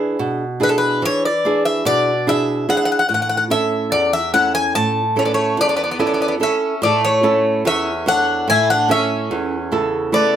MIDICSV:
0, 0, Header, 1, 4, 480
1, 0, Start_track
1, 0, Key_signature, 3, "major"
1, 0, Tempo, 828729
1, 1793, Time_signature, 9, 3, 24, 8
1, 6001, End_track
2, 0, Start_track
2, 0, Title_t, "Bouzouki"
2, 0, Program_c, 0, 25
2, 367, Note_on_c, 0, 71, 75
2, 399, Note_off_c, 0, 71, 0
2, 400, Note_on_c, 0, 69, 56
2, 438, Note_off_c, 0, 69, 0
2, 451, Note_on_c, 0, 71, 66
2, 591, Note_off_c, 0, 71, 0
2, 611, Note_on_c, 0, 73, 82
2, 714, Note_off_c, 0, 73, 0
2, 726, Note_on_c, 0, 74, 68
2, 943, Note_off_c, 0, 74, 0
2, 958, Note_on_c, 0, 76, 67
2, 1078, Note_off_c, 0, 76, 0
2, 1080, Note_on_c, 0, 74, 91
2, 1324, Note_off_c, 0, 74, 0
2, 1326, Note_on_c, 0, 76, 77
2, 1560, Note_off_c, 0, 76, 0
2, 1563, Note_on_c, 0, 78, 84
2, 1597, Note_off_c, 0, 78, 0
2, 1604, Note_on_c, 0, 78, 61
2, 1642, Note_off_c, 0, 78, 0
2, 1653, Note_on_c, 0, 78, 62
2, 1683, Note_off_c, 0, 78, 0
2, 1690, Note_on_c, 0, 78, 50
2, 1726, Note_off_c, 0, 78, 0
2, 1733, Note_on_c, 0, 78, 60
2, 1771, Note_off_c, 0, 78, 0
2, 1788, Note_on_c, 0, 78, 44
2, 1813, Note_off_c, 0, 78, 0
2, 1820, Note_on_c, 0, 78, 58
2, 1859, Note_off_c, 0, 78, 0
2, 1865, Note_on_c, 0, 78, 52
2, 1901, Note_off_c, 0, 78, 0
2, 1908, Note_on_c, 0, 78, 63
2, 1947, Note_off_c, 0, 78, 0
2, 1954, Note_on_c, 0, 78, 52
2, 1991, Note_off_c, 0, 78, 0
2, 2035, Note_on_c, 0, 76, 81
2, 2270, Note_on_c, 0, 74, 83
2, 2281, Note_off_c, 0, 76, 0
2, 2383, Note_off_c, 0, 74, 0
2, 2394, Note_on_c, 0, 76, 80
2, 2505, Note_off_c, 0, 76, 0
2, 2512, Note_on_c, 0, 78, 84
2, 2624, Note_off_c, 0, 78, 0
2, 2634, Note_on_c, 0, 80, 83
2, 2745, Note_off_c, 0, 80, 0
2, 2753, Note_on_c, 0, 81, 89
2, 3006, Note_on_c, 0, 73, 63
2, 3041, Note_off_c, 0, 73, 0
2, 3043, Note_on_c, 0, 74, 47
2, 3079, Note_off_c, 0, 74, 0
2, 3094, Note_on_c, 0, 73, 61
2, 3246, Note_off_c, 0, 73, 0
2, 3248, Note_on_c, 0, 74, 82
2, 3282, Note_off_c, 0, 74, 0
2, 3296, Note_on_c, 0, 74, 57
2, 3328, Note_off_c, 0, 74, 0
2, 3340, Note_on_c, 0, 74, 56
2, 3371, Note_off_c, 0, 74, 0
2, 3380, Note_on_c, 0, 74, 43
2, 3413, Note_off_c, 0, 74, 0
2, 3425, Note_on_c, 0, 74, 47
2, 3449, Note_off_c, 0, 81, 0
2, 3458, Note_off_c, 0, 74, 0
2, 3475, Note_on_c, 0, 74, 41
2, 3505, Note_off_c, 0, 74, 0
2, 3515, Note_on_c, 0, 74, 47
2, 3546, Note_off_c, 0, 74, 0
2, 3558, Note_on_c, 0, 74, 43
2, 3590, Note_off_c, 0, 74, 0
2, 3601, Note_on_c, 0, 74, 53
2, 3631, Note_off_c, 0, 74, 0
2, 3638, Note_on_c, 0, 74, 45
2, 3673, Note_off_c, 0, 74, 0
2, 3724, Note_on_c, 0, 76, 71
2, 3942, Note_off_c, 0, 76, 0
2, 3957, Note_on_c, 0, 74, 75
2, 4078, Note_off_c, 0, 74, 0
2, 4081, Note_on_c, 0, 73, 69
2, 4413, Note_off_c, 0, 73, 0
2, 4444, Note_on_c, 0, 76, 82
2, 4661, Note_off_c, 0, 76, 0
2, 4682, Note_on_c, 0, 78, 87
2, 4919, Note_off_c, 0, 78, 0
2, 4922, Note_on_c, 0, 80, 88
2, 5028, Note_off_c, 0, 80, 0
2, 5040, Note_on_c, 0, 78, 79
2, 5159, Note_off_c, 0, 78, 0
2, 5161, Note_on_c, 0, 76, 82
2, 5870, Note_off_c, 0, 76, 0
2, 5872, Note_on_c, 0, 74, 81
2, 6001, Note_off_c, 0, 74, 0
2, 6001, End_track
3, 0, Start_track
3, 0, Title_t, "Nylon-string guitar"
3, 0, Program_c, 1, 24
3, 0, Note_on_c, 1, 52, 64
3, 0, Note_on_c, 1, 62, 52
3, 0, Note_on_c, 1, 64, 45
3, 0, Note_on_c, 1, 68, 53
3, 93, Note_off_c, 1, 52, 0
3, 112, Note_on_c, 1, 47, 61
3, 250, Note_off_c, 1, 62, 0
3, 253, Note_off_c, 1, 64, 0
3, 253, Note_off_c, 1, 68, 0
3, 347, Note_on_c, 1, 62, 41
3, 351, Note_on_c, 1, 68, 46
3, 352, Note_on_c, 1, 64, 40
3, 578, Note_off_c, 1, 47, 0
3, 591, Note_on_c, 1, 52, 57
3, 733, Note_off_c, 1, 62, 0
3, 735, Note_off_c, 1, 64, 0
3, 736, Note_off_c, 1, 68, 0
3, 839, Note_on_c, 1, 62, 47
3, 843, Note_on_c, 1, 64, 40
3, 847, Note_on_c, 1, 68, 52
3, 1058, Note_off_c, 1, 52, 0
3, 1073, Note_on_c, 1, 47, 57
3, 1221, Note_off_c, 1, 62, 0
3, 1223, Note_off_c, 1, 64, 0
3, 1225, Note_off_c, 1, 68, 0
3, 1315, Note_on_c, 1, 62, 46
3, 1319, Note_on_c, 1, 68, 50
3, 1320, Note_on_c, 1, 64, 39
3, 1539, Note_off_c, 1, 47, 0
3, 1548, Note_off_c, 1, 64, 0
3, 1550, Note_off_c, 1, 62, 0
3, 1551, Note_off_c, 1, 68, 0
3, 1556, Note_on_c, 1, 62, 42
3, 1557, Note_on_c, 1, 64, 34
3, 1558, Note_on_c, 1, 68, 48
3, 1746, Note_off_c, 1, 64, 0
3, 1747, Note_off_c, 1, 62, 0
3, 1748, Note_off_c, 1, 68, 0
3, 1792, Note_on_c, 1, 45, 59
3, 2028, Note_on_c, 1, 61, 45
3, 2031, Note_on_c, 1, 64, 44
3, 2035, Note_on_c, 1, 69, 55
3, 2258, Note_off_c, 1, 45, 0
3, 2272, Note_on_c, 1, 40, 57
3, 2414, Note_off_c, 1, 61, 0
3, 2416, Note_off_c, 1, 64, 0
3, 2417, Note_off_c, 1, 69, 0
3, 2511, Note_on_c, 1, 61, 44
3, 2513, Note_on_c, 1, 64, 35
3, 2516, Note_on_c, 1, 69, 50
3, 2738, Note_off_c, 1, 40, 0
3, 2754, Note_on_c, 1, 45, 55
3, 2896, Note_off_c, 1, 61, 0
3, 2897, Note_off_c, 1, 64, 0
3, 2899, Note_off_c, 1, 69, 0
3, 2989, Note_on_c, 1, 61, 43
3, 2992, Note_on_c, 1, 69, 47
3, 2993, Note_on_c, 1, 64, 42
3, 3219, Note_off_c, 1, 45, 0
3, 3227, Note_on_c, 1, 40, 59
3, 3374, Note_off_c, 1, 61, 0
3, 3375, Note_off_c, 1, 69, 0
3, 3376, Note_off_c, 1, 64, 0
3, 3469, Note_on_c, 1, 61, 43
3, 3472, Note_on_c, 1, 64, 39
3, 3474, Note_on_c, 1, 69, 47
3, 3695, Note_off_c, 1, 40, 0
3, 3698, Note_off_c, 1, 61, 0
3, 3703, Note_off_c, 1, 64, 0
3, 3704, Note_off_c, 1, 69, 0
3, 3705, Note_on_c, 1, 61, 39
3, 3709, Note_on_c, 1, 64, 37
3, 3712, Note_on_c, 1, 69, 45
3, 3900, Note_off_c, 1, 61, 0
3, 3903, Note_off_c, 1, 64, 0
3, 3903, Note_off_c, 1, 69, 0
3, 3949, Note_on_c, 1, 45, 73
3, 4188, Note_on_c, 1, 61, 49
3, 4190, Note_on_c, 1, 64, 44
3, 4193, Note_on_c, 1, 69, 55
3, 4416, Note_off_c, 1, 45, 0
3, 4432, Note_on_c, 1, 40, 65
3, 4574, Note_off_c, 1, 61, 0
3, 4574, Note_off_c, 1, 64, 0
3, 4575, Note_off_c, 1, 69, 0
3, 4669, Note_on_c, 1, 73, 43
3, 4674, Note_on_c, 1, 64, 45
3, 4677, Note_on_c, 1, 69, 54
3, 4897, Note_off_c, 1, 40, 0
3, 4909, Note_on_c, 1, 45, 63
3, 5053, Note_off_c, 1, 73, 0
3, 5057, Note_off_c, 1, 64, 0
3, 5057, Note_off_c, 1, 69, 0
3, 5147, Note_on_c, 1, 61, 50
3, 5149, Note_on_c, 1, 64, 42
3, 5154, Note_on_c, 1, 69, 51
3, 5375, Note_off_c, 1, 45, 0
3, 5392, Note_on_c, 1, 40, 59
3, 5532, Note_off_c, 1, 61, 0
3, 5532, Note_off_c, 1, 64, 0
3, 5536, Note_off_c, 1, 69, 0
3, 5628, Note_on_c, 1, 49, 42
3, 5630, Note_on_c, 1, 64, 41
3, 5633, Note_on_c, 1, 69, 47
3, 5856, Note_off_c, 1, 40, 0
3, 5860, Note_off_c, 1, 64, 0
3, 5863, Note_off_c, 1, 69, 0
3, 5864, Note_on_c, 1, 57, 46
3, 5867, Note_on_c, 1, 64, 45
3, 5870, Note_on_c, 1, 69, 52
3, 6001, Note_off_c, 1, 49, 0
3, 6001, Note_off_c, 1, 57, 0
3, 6001, Note_off_c, 1, 64, 0
3, 6001, Note_off_c, 1, 69, 0
3, 6001, End_track
4, 0, Start_track
4, 0, Title_t, "Bouzouki"
4, 0, Program_c, 2, 25
4, 3010, Note_on_c, 2, 57, 54
4, 3040, Note_off_c, 2, 57, 0
4, 3043, Note_on_c, 2, 59, 44
4, 3077, Note_off_c, 2, 59, 0
4, 3095, Note_on_c, 2, 57, 52
4, 3232, Note_off_c, 2, 57, 0
4, 3253, Note_on_c, 2, 57, 59
4, 3284, Note_off_c, 2, 57, 0
4, 3291, Note_on_c, 2, 59, 38
4, 3325, Note_off_c, 2, 59, 0
4, 3337, Note_on_c, 2, 59, 41
4, 3370, Note_off_c, 2, 59, 0
4, 3385, Note_on_c, 2, 59, 42
4, 3416, Note_off_c, 2, 59, 0
4, 3426, Note_on_c, 2, 59, 45
4, 3458, Note_off_c, 2, 59, 0
4, 3471, Note_on_c, 2, 59, 38
4, 3502, Note_off_c, 2, 59, 0
4, 3509, Note_on_c, 2, 59, 36
4, 3543, Note_off_c, 2, 59, 0
4, 3553, Note_on_c, 2, 59, 36
4, 3587, Note_off_c, 2, 59, 0
4, 3596, Note_on_c, 2, 59, 38
4, 3630, Note_off_c, 2, 59, 0
4, 3640, Note_on_c, 2, 59, 37
4, 3675, Note_off_c, 2, 59, 0
4, 3726, Note_on_c, 2, 61, 56
4, 3943, Note_off_c, 2, 61, 0
4, 3967, Note_on_c, 2, 57, 71
4, 4072, Note_off_c, 2, 57, 0
4, 4086, Note_on_c, 2, 57, 65
4, 4416, Note_off_c, 2, 57, 0
4, 4440, Note_on_c, 2, 61, 66
4, 4659, Note_off_c, 2, 61, 0
4, 4681, Note_on_c, 2, 62, 70
4, 4899, Note_off_c, 2, 62, 0
4, 4929, Note_on_c, 2, 64, 71
4, 5032, Note_off_c, 2, 64, 0
4, 5047, Note_on_c, 2, 62, 65
4, 5151, Note_off_c, 2, 62, 0
4, 5165, Note_on_c, 2, 61, 72
4, 5853, Note_off_c, 2, 61, 0
4, 5883, Note_on_c, 2, 59, 56
4, 6001, Note_off_c, 2, 59, 0
4, 6001, End_track
0, 0, End_of_file